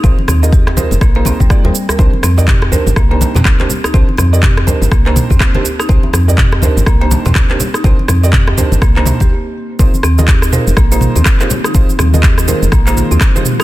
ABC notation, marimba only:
X:1
M:4/4
L:1/16
Q:"Swing 16ths" 1/4=123
K:Bbmix
V:1 name="Marimba"
C z C z G z B z B, B, C G, z G, z B | C z C z G z B z B, B, z C z G z E | C z C z G z B z B, B, z C z G z E | C z C z G z B z B, B, z C z G z E |
C z C z G z B z B, B, z G z4 | C z C z G z B z B, B, z C z G z E | C z C z G z B z B, B, z C z G z E |]